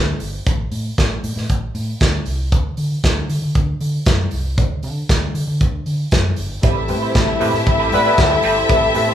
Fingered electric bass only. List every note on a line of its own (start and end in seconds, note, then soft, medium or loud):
0.00 0.13 D2 medium
0.20 0.38 G1 medium
0.47 0.64 A1 loud
0.72 0.89 A2 medium
0.98 1.15 A1 medium
1.23 1.32 A2 loud
1.36 1.45 A2 loud
1.50 1.67 A1 medium
1.75 1.92 A2 loud
2.01 2.18 D2 medium
2.26 2.52 C2 medium
2.52 2.70 D2 loud
2.78 2.95 D3 medium
3.04 3.21 D2 loud
3.29 3.38 D3 loud
3.42 3.51 D3 loud
3.56 3.73 D2 medium
3.81 3.98 D3 loud
4.06 4.24 F#2 medium
4.33 4.58 C2 medium
4.58 4.85 D2 loud
4.83 5.01 D3 medium
5.09 5.27 D2 loud
5.34 5.43 D3 medium
5.47 5.62 D3 medium
5.61 5.78 D2 medium
5.86 6.04 D3 medium
6.12 6.30 F#2 loud
6.38 6.55 G1 medium
6.63 6.91 A1 medium
6.89 7.07 A2 medium
7.15 7.32 A1 loud
7.41 7.50 A2 loud
7.53 7.62 A2 loud
7.67 7.93 A1 loud
7.92 8.09 A2 loud
8.18 8.36 D2 medium
8.44 8.61 G1 medium
8.70 8.87 A1 loud
8.95 9.13 A2 medium